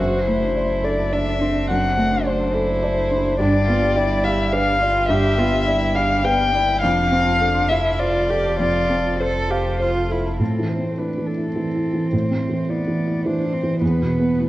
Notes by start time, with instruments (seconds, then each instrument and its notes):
Already playing: harp D4
0.00 sub bass F#1, felt piano F#2, cello F#4, violin C5
0.26 felt piano A3, cello E4, harp F#4
0.41 harp D4
0.55 harp C5, felt piano D5
0.70 harp A4
0.84 harp D4, felt piano A4, violin D5
0.98 harp A4
1.12 cello D4, harp A4, felt piano D5, violin E5
1.27 harp D4
1.40 cello C4, felt piano D4, harp C5
1.55 harp F#4
1.69 felt piano F#2, harp D4, violin F#5
1.97 felt piano A3, harp F#4
2.12 harp D4
2.26 cello D4, harp C5, violin C5, felt piano D5
2.40 harp A4
2.54 harp D4, cello E4, felt piano A4
2.69 harp A4
2.83 harp A4, felt piano D5
2.97 harp D4
3.11 felt piano D4, harp C5
3.25 harp F#4
3.39 sub bass G1, felt piano G2, cello D4, harp G4, violin D5
3.68 felt piano B3, cello F4, harp B4
3.82 harp G4
3.96 cello E4, felt piano D5, harp G5
4.11 harp D5
4.24 harp G4, violin E5, felt piano F5
4.39 harp D5
4.53 cello D4, felt piano B4, harp D5, violin F5
4.67 harp G4
4.81 cello F4, felt piano D5
4.96 harp B4
5.09 felt piano G2, cello G4, harp G4, violin E5
5.38 felt piano B3, cello F4, harp B4
5.54 harp G4
5.67 cello E4, felt piano D5, harp F5
5.82 harp D5
5.95 cello D4, harp G4, felt piano F5, violin F5
6.11 harp D5
6.24 cello B3, felt piano B4, harp D5, violin G5
6.39 harp G4
6.53 cello E4, felt piano D5, harp F5
6.68 harp B4
6.81 sub bass F1, felt piano F2, cello D4, harp F4, violin F5
7.11 cello C4, felt piano C4, harp A4
7.25 harp F4
7.39 cello D4, felt piano A4, harp F5
7.54 harp C6
7.68 cello E4, harp F4, violin E5, felt piano F5
7.99 cello F4, felt piano C5, violin D5
8.14 harp F4
8.29 cello G4, felt piano A4, harp F5
8.45 harp A4
8.59 felt piano F2, harp F4, cello F4, violin D5
8.89 felt piano C4, harp A4
9.05 harp F4
9.20 cello A4, felt piano A4, violin C5, harp F5
9.50 harp F4, cello G4, felt piano F5
9.80 cello F4, felt piano C5
9.95 harp F4
10.10 cello E4, felt piano A4, harp F5
10.26 harp A4
10.39 felt piano A2, cello C4, violin A4
10.59 felt piano E3
10.69 violin C5
10.78 felt piano C4
10.98 cello D4, felt piano E4, violin B4
11.18 felt piano E3
11.26 violin A4
11.37 felt piano E4
11.55 felt piano E3, cello C4
11.75 felt piano E4
11.94 felt piano E3
12.12 felt piano A2, violin C5
12.31 felt piano C4
12.49 felt piano E3
12.69 cello B3, felt piano E4, violin D5
12.88 felt piano E3
13.07 felt piano E4
13.26 felt piano E3, cello D4, violin C5
13.45 felt piano E4
13.53 cello C4
13.63 felt piano E3
13.80 felt piano E2, cello B3, violin B4
14.01 felt piano B2
14.19 felt piano B3
14.38 cello A3, felt piano E4